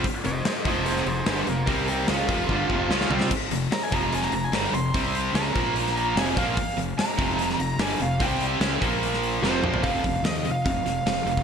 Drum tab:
CC |----------------|----------------|x---------------|----------------|
HH |o-o-o-o-o-o-o-o-|o-o-o-o---------|--o-o-o-o-o-o-o-|o-o-o-o-o-o-o-o-|
SD |----o----o--o---|----o-------oo-o|----o----o--o---|----o----o--o---|
T2 |----------------|----------------|----------------|----------------|
FT |----------------|--------------o-|----------------|----------------|
BD |o-----o---------|o-----o-o-o-----|o-----o---------|o-----o-------o-|

CC |----------------|----------------|----------------|
HH |o-o-o-o-o-o-o-o-|o-o-o-o-o-o-----|o-o-o-o-o-o-o-o-|
SD |----o----o--o---|----o----o--o---|----o-----o-o---|
T2 |----------------|--------------o-|----------------|
FT |----------------|---------------o|----------------|
BD |o-----o---------|o-----o---------|o-o-----o------o|